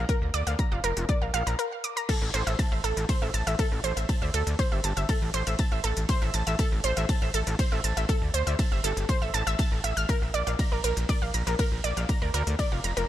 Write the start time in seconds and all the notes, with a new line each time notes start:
0.09 A#4 A#5, kick, closed hi-hat
0.22 D2
0.34 D2 D5 D6, closed hi-hat
0.47 D2 F5 F6, closed hi-hat
0.59 A#5 A#6, kick, closed hi-hat
0.72 F1 F5 F6
0.84 F1 A#4 A#5, closed hi-hat
0.97 F1, closed hi-hat
1.09 D5 D6, kick, closed hi-hat
1.22 A#1 F5 F6
1.34 A#1 F5 F6, closed hi-hat
1.47 A#1 A#5 A#6, closed hi-hat
1.59 A#4 A#5, closed hi-hat
1.84 D6, closed hi-hat
1.97 A#5 A#6, closed hi-hat
2.09 A4 A5, kick, closed hi-hat, crash, ride
2.22 A1
2.34 A1 C5 C6, closed hi-hat
2.47 A1 E5 E6, closed hi-hat
2.59 A5 A6, kick, closed hi-hat, ride
2.72 A1 E5 E6
2.84 A1 A4 A5, closed hi-hat
2.97 A1, closed hi-hat
3.09 C5 C6, kick, closed hi-hat, ride
3.22 A1 E5 E6
3.34 A1 A5 A6, closed hi-hat
3.47 A1 E5 E6, closed hi-hat
3.59 A4 A5, kick, closed hi-hat, ride
3.72 A1
3.84 A1 C5 C6, closed hi-hat
3.97 A1 E5 E6, closed hi-hat
4.09 A5 A6, kick, closed hi-hat, ride
4.22 D2 E5 E6
4.34 D2 A4 A5, closed hi-hat
4.47 D2, closed hi-hat
4.59 C5 C6, kick, closed hi-hat, ride
4.72 G1 E5 E6
4.84 G1 A5 A6, closed hi-hat
4.97 G1 E5 E6, closed hi-hat
5.09 A4 A5, kick, closed hi-hat, ride
5.22 A1
5.34 A1 C5 C6, closed hi-hat
5.47 A1 E5 E6, closed hi-hat
5.59 A5 A6, kick, closed hi-hat, ride
5.72 A1 E5 E6
5.84 A1 A4 A5, closed hi-hat
5.97 A1, closed hi-hat
6.09 C5 C6, kick, closed hi-hat, ride
6.22 A1 E5 E6
6.34 A1 A5 A6, closed hi-hat
6.47 A1 E5 E6, closed hi-hat
6.59 A4 A5, kick, closed hi-hat, ride
6.72 A1
6.84 A1 C5 C6, closed hi-hat
6.97 A1 E5 E6, closed hi-hat
7.09 A5 A6, kick, closed hi-hat, ride
7.22 A1 E5 E6
7.34 A1 A4 A5, closed hi-hat
7.47 A1, closed hi-hat
7.59 C5 C6, kick, closed hi-hat, ride
7.72 A1 E5 E6
7.84 A1 A5 A6, closed hi-hat
7.97 A1 E5 E6, closed hi-hat
8.09 A4 A5, kick, closed hi-hat, ride
8.22 D2
8.34 D2 C5 C6, closed hi-hat
8.47 D2 E5 E6, closed hi-hat
8.59 A5 A6, kick, closed hi-hat, ride
8.72 G1 E5 E6
8.84 G1 A4 A5, closed hi-hat
8.97 G1, closed hi-hat
9.09 C5 C6, kick, closed hi-hat, ride
9.22 A1 E5 E6
9.34 A1 A5 A6, closed hi-hat
9.47 A1 E5 E6, closed hi-hat
9.59 A5 A6, kick, closed hi-hat, ride
9.72 A1
9.84 A1 E5 E6, closed hi-hat
9.97 A1 F6, closed hi-hat
10.09 A#4 A#5, kick, closed hi-hat, ride
10.22 A#1
10.34 A#1 D5 D6, closed hi-hat
10.47 A#1 F5 F6, closed hi-hat
10.59 A#5 A#6, kick, closed hi-hat, ride
10.72 A#1 A#4 A#5
10.84 A#1 A#4 A#5, closed hi-hat
10.97 A#1, closed hi-hat
11.09 D5 D6, kick, closed hi-hat, ride
11.22 A#1 F5 F6
11.34 A#1 A#5 A#6, closed hi-hat
11.47 A#1 A#4 A#5, closed hi-hat
11.59 A#4 A#5, kick, closed hi-hat, ride
11.72 A#1
11.84 A#1 D5 D6, closed hi-hat
11.97 A#1 F5 F6, closed hi-hat
12.09 A#5 A#6, kick, closed hi-hat, ride
12.22 D2 A#4 A#5
12.34 D2 A#4 A#5, closed hi-hat
12.47 D2, closed hi-hat
12.59 D5 D6, kick, closed hi-hat, ride
12.72 F1 F5 F6
12.84 F1 A#5 A#6, closed hi-hat
12.97 F1 A#4 A#5, closed hi-hat